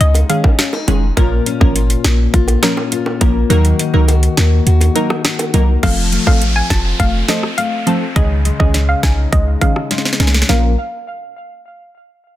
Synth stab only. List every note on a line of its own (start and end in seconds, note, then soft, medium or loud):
0.29 0.47 D#3 medium
0.29 0.47 G#3 medium
0.29 0.47 C#4 medium
0.29 0.47 G#4 medium
0.87 1.05 D#3 medium
0.87 1.05 G#3 medium
0.87 1.05 C#4 medium
0.87 1.05 G#4 medium
1.17 1.57 F3 medium
1.17 1.57 A#3 medium
1.17 1.57 C#4 medium
1.17 1.57 A#4 loud
1.60 1.78 F3 medium
1.60 1.78 A#3 medium
1.60 1.78 C#4 medium
1.60 1.78 A#4 medium
2.62 2.80 F3 medium
2.62 2.80 A#3 medium
2.62 2.80 C#4 medium
2.62 2.80 A#4 medium
3.21 3.38 F3 medium
3.21 3.38 A#3 medium
3.21 3.38 C#4 medium
3.21 3.38 A#4 medium
3.50 3.90 F#3 loud
3.50 3.90 A#3 medium
3.50 3.90 D#4 medium
3.50 3.90 A#4 loud
3.93 4.11 F#3 medium
3.93 4.11 A#3 medium
3.93 4.11 D#4 medium
3.93 4.11 A#4 medium
4.95 5.13 F#3 medium
4.95 5.13 A#3 medium
4.95 5.13 D#4 medium
4.95 5.13 A#4 medium
5.54 5.71 F#3 medium
5.54 5.71 A#3 medium
5.54 5.71 D#4 medium
5.54 5.71 A#4 medium
5.83 6.23 F3 loud
5.83 6.23 A3 medium
5.83 6.23 C4 medium
5.83 6.23 A4 loud
6.26 6.44 F3 medium
6.26 6.44 A3 medium
6.26 6.44 C4 medium
6.26 6.44 A4 medium
7.28 7.46 F3 medium
7.28 7.46 A3 medium
7.28 7.46 C4 medium
7.28 7.46 A4 medium
7.86 8.04 F3 medium
7.86 8.04 A3 medium
7.86 8.04 C4 medium
7.86 8.04 A4 medium
8.16 8.56 D#3 loud
8.16 8.56 G#3 medium
8.16 8.56 C#4 medium
8.16 8.56 G#4 loud
8.59 8.77 D#3 medium
8.59 8.77 G#3 medium
8.59 8.77 C#4 medium
8.59 8.77 G#4 medium
9.61 9.79 D#3 medium
9.61 9.79 G#3 medium
9.61 9.79 C#4 medium
9.61 9.79 G#4 medium
10.20 10.37 D#3 medium
10.20 10.37 G#3 medium
10.20 10.37 C#4 medium
10.20 10.37 G#4 medium
10.48 10.70 F3 medium
10.48 10.71 A#3 medium
10.48 10.71 C#4 medium
10.48 10.71 A#4 loud